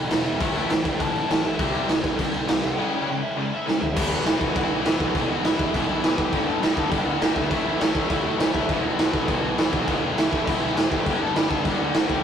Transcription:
Already playing: E3
0.10 E1 E2 B2 E3 G#3 B3 E4 G#4 E5, snare, crash
0.26 E1 G#4 E5, crash
0.39 A1 A2 E3 A3 C#4 E4 G4 E5, kick, crash
0.55 A1 B4 G5, crash
0.69 A1 A2 E3 A3 C#4 E4 B4 G5, snare, crash
0.85 B4 G5, kick, crash
0.99 A1 A2 E3 A3 C#4 E4 C#5 A5, kick, crash
1.14 A1 C#5 A5, crash
1.29 A1 A2 E3 A3 C#4 E4 C#5 A5, snare, crash
1.45 A1 E5, crash
1.58 C2 C3 E3 G3 C4 E4, kick, crash
1.75 crash
1.88 C2 C3 E3 G3 C4 E4, snare, crash
2.04 C2, kick, crash
2.18 C2 C3 E3 G3 C4 E4, kick, crash
2.34 C2, crash
2.47 C2 C3 E3 G3 C4 E4, snare, crash
2.63 C2 G5, crash
2.77 C#3 G#3 C#4 E4
3.07 C#3 G#3 C#4 E4
3.23 E5
3.37 C#3 G#3 C#4 E4 D5
3.53 E5
3.66 C#3 G#3 C#4 E4 C#5, snare
3.81 E4 E5, floor tom
3.96 E1 E2 B2 E3 G#3 B3 E4 E5, kick, crash
4.11 E1 F#4 F#5
4.26 E1 E2 B2 E3 G#3 B3 E4, snare, crash
4.41 E1, kick
4.56 E1 E2 B2 E3 G#3 B3 E4 F#4 F#5, kick, crash
4.71 B1
4.77 G#4 G#5
4.85 E1 E2 B2 E3 G#3 B3 E4, snare, crash
4.99 B1 F#4 F#5, kick
5.14 E1 E2 B2 E3 G#3 B3 E4 G#4 G#5, kick, crash
5.29 E1 F#4 F#5
5.44 E1 E2 B2 E3 G#3 B3 E4 E5, snare, crash
5.59 E1, kick
5.73 E1 E2 B2 E3 G#3 B3 E4 E5, kick, crash
5.88 B1
6.02 E1 E2 B2 E3 G#3 B3 E4 G#4 G#5, snare, crash
6.17 B1 G4 G5, kick
6.31 G1 G2 D3 G3 B3 D4, kick, crash
6.47 G1 A4 A5
6.61 G1 G2 D3 G3 B3 D4 B4 B5, snare, crash
6.75 G1 A4 A5, kick
6.90 G1 G2 D3 G3 B3 D4 G4 G5, kick, crash
7.05 D2 F#4 F#5
7.20 G1 G2 D3 G3 B3 D4, snare, crash
7.34 D2 E4 E5, kick
7.50 A1 A2 E3 A3 C#4 E4 E5, kick, crash
7.65 A1
7.78 A1 A2 E3 A3 C#4 E4 C#5, snare, crash
7.95 A1, kick
8.07 A1 A2 E3 A3 C#4 E4 E5, kick, crash
8.24 E2 F#4 F#5
8.39 A1 A2 E3 A3 C#4 E4 C#5, snare, crash
8.53 D#2 E4 E5, kick
8.68 E1 E2 B2 E3 G#3 B3 E4 E5, kick, crash
8.82 E1 F#4 F#5
8.98 E1 E2 B2 E3 G#3 B3 E4, snare, crash
9.14 E1, kick
9.27 E1 E2 B2 E3 G#3 B3 E4 F#4 F#5, kick, crash
9.43 B1
9.49 G#4 G#5
9.57 E1 E2 B2 E3 G#3 B3 E4, snare, crash
9.71 B1 F#4 F#5, kick
9.86 E1 E2 B2 E3 G#3 B3 E4 G#4 G#5, kick, crash
10.03 E1
10.16 E1 E2 B2 E3 G#3 B3 E4 E5, snare, crash
10.32 E1, kick
10.46 E1 E2 B2 E3 G#3 B3 E4 E5, kick, crash
10.62 B1
10.75 E1 E2 B2 E3 G#3 B3 E4 G#4 G#5, snare, crash
10.91 G#1 G4 G5, kick
11.06 G1 G2 D3 G3 B3 D4, kick, crash
11.21 G1 A4 A5
11.35 G1 G2 D3 G3 B3 D4 B4 B5, snare, crash
11.50 G1 A4 A5, kick
11.64 G1 G2 D3 G3 B3 D4 G4 G5, kick, crash
11.79 D2 F#4 F#5
11.94 G1 G2 D3 G3 B3 D4, snare, crash
12.10 D2 G4 G5, kick

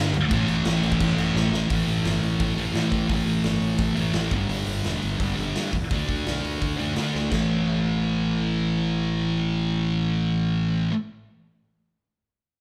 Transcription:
Already playing: G2 D3 G3
0.13 D2, crash
0.28 A1 A2 E3, kick, crash
0.34 A3
0.48 A1, crash
0.65 A1, snare, crash
0.75 snare
0.83 A1, crash
0.92 kick
1.00 A1, kick, crash
1.18 A1, snare, crash
1.34 A1, snare
1.51 A1, snare
1.68 A1 A2 E3, kick, open hi-hat
1.73 A3
1.87 A1, open hi-hat
2.04 G1, snare, open hi-hat
2.15 snare
2.22 A1, open hi-hat
2.40 A1, kick, open hi-hat
2.56 A1 E3 A3, open hi-hat
2.61 A2
2.73 A2 E3, snare, open hi-hat
2.78 A3
2.92 A1, kick, open hi-hat
3.08 A1 A2 E3, kick, open hi-hat
3.14 A3
3.26 A1, open hi-hat
3.44 G1, snare, open hi-hat
3.54 snare
3.61 A1, open hi-hat
3.78 A1, kick, open hi-hat
3.96 A1 E3 A3, open hi-hat
4.01 A2
4.13 A1 A2 E3, snare, open hi-hat
4.19 A3
4.31 G1 G2 D3, kick, open hi-hat
4.37 G3
4.49 G1, open hi-hat
4.67 G1, open hi-hat
4.84 E1, snare, open hi-hat
4.94 snare
5.02 G1, open hi-hat
5.18 G1 G2 D3, kick, open hi-hat
5.23 G3
5.35 G1 D3 G3, open hi-hat
5.41 G2
5.55 G2, snare, open hi-hat
5.73 E2, kick, open hi-hat
5.90 D2 D3 A3, kick, open hi-hat
5.94 D4
6.09 D2, kick, open hi-hat
6.26 B1, snare, open hi-hat
6.36 snare
6.44 D2, open hi-hat
6.61 D2, kick, open hi-hat
6.77 D2 A3 D4, open hi-hat
6.82 D3
6.94 D3 A3, snare, open hi-hat
7.00 D4
7.15 D2, snare
7.30 A1 A2 E3 A3, kick, snare, china

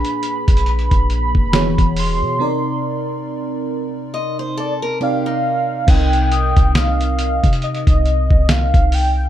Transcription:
Already playing: A#2 A#3 D4 G#4 B4 B5
0.05 closed hi-hat
0.23 closed hi-hat
0.48 A#1, kick, closed hi-hat
0.57 closed hi-hat
0.66 B5, closed hi-hat
0.79 closed hi-hat
0.91 A#1, kick, closed hi-hat
1.10 closed hi-hat
1.35 E1, kick
1.53 E3 B3 F#4 G#4 C#5, snare, closed hi-hat
1.78 E1, kick, closed hi-hat
1.96 C6, open hi-hat
2.22 B2
2.39 C3 C4 D#4 A#4 D5 A#5
4.14 D#5 C6
4.39 C5
4.57 A4 D5
4.82 A#4
5.00 C3 C4 D#4 G4 A#4 D5 F5
5.26 D#4
5.87 C2 C3 C4 D#4 A#4 D#5 G5, kick, closed hi-hat, crash
6.13 closed hi-hat
6.32 D#6, closed hi-hat
6.57 C2, kick, closed hi-hat
6.75 F5, snare, closed hi-hat
7.01 closed hi-hat
7.19 closed hi-hat
7.44 C3, kick, closed hi-hat
7.53 closed hi-hat
7.62 D#5, closed hi-hat
7.74 closed hi-hat
7.87 C2, kick, closed hi-hat
8.05 closed hi-hat
8.30 C2, kick
8.49 F5, snare, closed hi-hat
8.74 C2, kick, closed hi-hat
8.92 G5, open hi-hat

